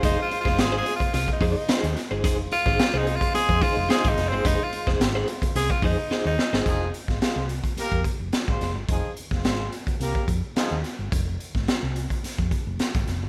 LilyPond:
<<
  \new Staff \with { instrumentName = "Clean electric guitar" } { \time 4/4 \key f \minor \tempo 4 = 108 <ees' aes' c''>8 r16 <ees' aes' c''>16 r16 <ees' aes' c''>8 r8. <ees' aes' c''>8 <ees' aes' c''>8 r16 <ees' aes' c''>16 | <ees' aes' c''>8 r16 <ees' aes' c''>16 r16 <ees' aes' c''>8 r8. <ees' aes' c''>8 <ees' aes' c''>8 r16 <ees' aes' c''>16 | <ees' aes' c''>8 r16 <ees' aes' c''>16 r16 <ees' aes' c''>8 r8. <ees' aes' c''>8 <ees' aes' c''>8 r16 <ees' aes' c''>16 | r1 |
r1 | r1 | }
  \new Staff \with { instrumentName = "Horn section" } { \time 4/4 \key f \minor <aes f' c''>2.~ <aes f' c''>8 r8 | <aes f' c''>1~ | <aes f' c''>2.~ <aes f' c''>8 r8 | <f ees' aes'>8 r16 <aes f' c''>16 <aes f' c''>8 r8 <bes g' bes'>8 r8. <aes f' c''>8 r16 |
<f ees' aes'>8 r16 <aes f' c''>16 <aes f' c''>8 r8 <bes g' bes'>8 r8 <f ees' aes'>8 r8 | r1 | }
  \new Staff \with { instrumentName = "Tenor saxophone" } { \time 4/4 \key f \minor \tuplet 3/2 { ees'8 f'8 f'8 aes'8 aes'8 f'8 f'8 ees'8 ees'8~ } ees'8. r16 | r8 f'8~ \tuplet 3/2 { f'8 ees'8 f'8 } aes'8 f'8 \tuplet 3/2 { aes'8 ees'8 c'8 } | \tuplet 3/2 { ees'8 f'8. r16 } r4 aes'16 f'16 ees'8. ees'8. | r1 |
r1 | r1 | }
  \new Staff \with { instrumentName = "Fingered electric bass" } { \clef bass \time 4/4 \key f \minor f,,16 r8 f,,16 aes,,8 r8 c,16 r16 f,16 r8 ees,16 r16 g,,16 | f,,8 r16 aes,,16 r16 c,8 r8 f,16 r16 f,,16 r16 aes,,16 f,,16 g,,16 | f,,16 r8 f,,16 aes,,8 r8 c,16 r16 f,16 r8 ees,16 r16 g,,16 | f,,8 r16 aes,,16 r16 c,8 r8 f,16 r16 f,,16 r16 aes,,16 f,,16 g,,16 |
f,,16 r8 f,,16 aes,,8 r8 c,16 r16 f,16 r8 ees,16 r16 g,,16 | f,,8 r16 aes,,16 r16 c,8 r8 f,16 r16 f,,16 r16 aes,,16 f,,16 g,,16 | }
  \new DrumStaff \with { instrumentName = "Drums" } \drummode { \time 4/4 <hh bd>8 hh16 <bd sn>16 <hh sn>8 hh16 <hh bd>16 <hh sn>16 bd16 <hho bd>8 <hh sn>16 hh16 <hh sn>8 | <hh bd>8 hh16 <bd sn>16 <hh sn>8 hh16 <hh bd>16 <hh sn>16 bd16 <hho bd>8 <hh sn>16 <hh bd>16 <hh sn>8 | <hh bd>8 hh16 <bd sn>16 <hh sn>8 hh16 <hh bd>16 <hh sn>16 bd16 <hho bd>8 sn8 sn16 sn16 | <hh bd>8 hh16 <bd sn>16 <hh sn>8 hh16 <hh bd>16 <hh sn>16 bd16 <hh bd>8 <hh sn>16 bd16 <hh sn>8 |
<hh bd>8 hh16 <bd sn>16 <hh sn>8 hh16 <hh bd>16 <hh sn>16 bd16 <hh bd>8 <hh sn>8 <hh sn>8 | <hh bd>8 hh16 <bd sn>16 <hh sn>8 hh16 <hh bd>16 <hh sn>16 bd16 <hh bd>8 <hh sn>16 <hh bd>16 <hh sn>8 | }
>>